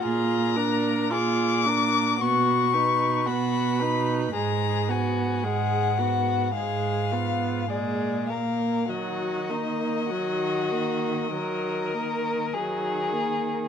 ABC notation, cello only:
X:1
M:4/4
L:1/8
Q:1/4=54
K:Ebm
V:1 name="Cello" clef=bass
B,,2 B,,2 =B,,2 B,,2 | A,,2 A,,2 A,,2 B,,2 | E,2 E,2 E,2 E,2 |]